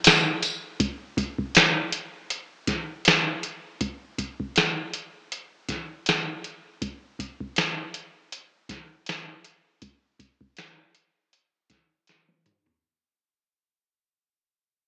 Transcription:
0.04 snare loud
0.04 closed hi-hat loud
0.04 tambourine medium
0.42 closed hi-hat medium
0.42 tambourine medium
0.80 kick loud
0.80 closed hi-hat medium
1.17 kick medium
1.17 closed hi-hat medium
1.39 kick medium
1.55 snare loud
1.55 closed hi-hat medium
1.93 closed hi-hat medium
2.30 closed hi-hat medium
2.67 kick medium
2.67 snare soft
2.67 closed hi-hat medium
3.05 snare loud
3.05 closed hi-hat medium
3.43 closed hi-hat medium
3.81 kick medium
3.81 closed hi-hat medium
4.18 kick medium
4.18 closed hi-hat medium
4.40 kick medium
4.56 snare loud
4.56 closed hi-hat medium
4.93 closed hi-hat medium
5.32 closed hi-hat medium
5.69 kick medium
5.69 snare soft
5.69 closed hi-hat medium
6.06 snare loud
6.06 closed hi-hat medium
6.44 closed hi-hat medium
6.82 kick loud
6.82 closed hi-hat medium
7.19 kick medium
7.19 closed hi-hat medium
7.40 kick medium
7.56 snare loud
7.56 closed hi-hat medium
7.94 closed hi-hat medium
8.32 closed hi-hat medium
8.69 kick medium
8.69 snare soft
8.69 closed hi-hat medium
9.06 snare loud
9.06 closed hi-hat medium
9.45 closed hi-hat medium
9.82 kick medium
9.82 closed hi-hat medium
10.20 kick medium
10.20 closed hi-hat medium
10.41 kick medium
10.57 snare loud
10.57 closed hi-hat medium
10.95 closed hi-hat medium
11.33 closed hi-hat medium
11.70 kick medium
11.70 snare soft
11.70 closed hi-hat medium
12.07 snare soft
12.07 closed hi-hat medium
12.28 high tom soft
12.46 closed hi-hat soft
12.46 mid tom medium
12.66 floor tom medium

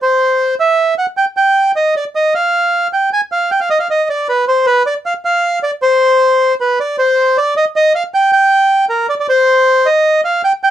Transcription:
0.02 0.55 C5 medium
0.60 0.94 E5 medium
0.98 1.06 F#5 medium
1.17 1.25 G5 medium
1.37 1.72 G5 medium
1.76 1.95 D#5 medium
1.97 2.05 D5 medium
2.15 2.34 D#5 medium
2.35 2.88 F5 medium
2.93 3.10 G5 medium
3.13 3.21 G#5 medium
3.32 3.51 F5 medium
3.51 3.60 G5 medium
3.60 3.69 F5 medium
3.70 3.78 D#5 medium
3.80 3.88 F5 medium
3.90 4.08 D#5 medium
4.10 4.28 D5 medium
4.29 4.45 B4 medium
4.48 4.66 C5 medium
4.66 4.83 B4 medium
4.86 4.94 D5 medium
5.06 5.14 F5 medium
5.25 5.59 F5 medium
5.63 5.71 D5 medium
5.82 6.55 C5 medium
6.61 6.79 B4 medium
6.80 6.96 D5 medium
6.98 7.37 C5 medium
7.38 7.54 D5 medium
7.57 7.65 D#5 medium
7.76 7.93 D#5 medium
7.95 8.03 F5 medium
8.14 8.31 G5 medium
8.33 8.85 G5 medium
8.89 9.07 A#4 medium
9.09 9.14 D5 medium
9.20 9.27 D5 medium
9.29 9.87 C5 medium
9.86 10.21 D#5 medium
10.25 10.42 F5 medium
10.44 10.52 G5 medium
10.64 10.71 G5 medium

